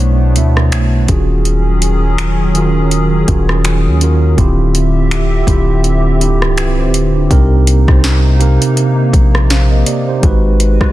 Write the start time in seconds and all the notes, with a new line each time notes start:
Already playing: B1 B2 A3 B3 D4 E4 C5 C#5
0.35 D2 B2 A3 D4 E4 E5, closed hi-hat
0.57 cross-stick
0.72 B1, finger snap, closed hi-hat
1.08 D#1 D#3 F#3 C#4 F4 F#4 G#4, kick, closed hi-hat
1.45 closed hi-hat
1.82 closed hi-hat
2.18 finger snap, closed hi-hat
2.54 D#3 C#4 F4 F#4 A#4, closed hi-hat
2.91 closed hi-hat
3.27 D#1 D#3 C#4 F4 F#4 G#4, kick, closed hi-hat
3.49 cross-stick
3.65 finger snap, closed hi-hat
3.87 D#2
4.01 D#3 C#4 F4 F#4 A#4, closed hi-hat
4.37 D1 D3 C4 E4 F4 G4 E5, kick, closed hi-hat
4.75 closed hi-hat
5.11 finger snap, closed hi-hat
5.47 D1 D3 C4 E4 F4 G4, kick, closed hi-hat
5.84 closed hi-hat
6.20 D3 C4 E4 F4 G4, closed hi-hat
6.42 C1, cross-stick
6.57 F4 B4, finger snap, closed hi-hat
6.79 G4 C5
6.86 D1
6.94 closed hi-hat
7.16 D4 G4
7.29 C2 C3 A#3 C4 D#4 A#4, kick, closed hi-hat
7.67 closed hi-hat
7.87 C2 C3 C4 D#4 C5, kick, cross-stick
8.04 snare, closed hi-hat
8.39 C3 C4 D#4 A#4, closed hi-hat
8.62 closed hi-hat
8.77 closed hi-hat
9.13 A#1, kick, closed hi-hat
9.35 cross-stick
9.50 C5 F5, snare, closed hi-hat
9.71 A#4 D#5
9.86 G4 D5, closed hi-hat
10.08 G4 C5
10.22 G#1 G#3 D#4 F#4 B4, kick, closed hi-hat
10.60 closed hi-hat
10.81 B1, kick, cross-stick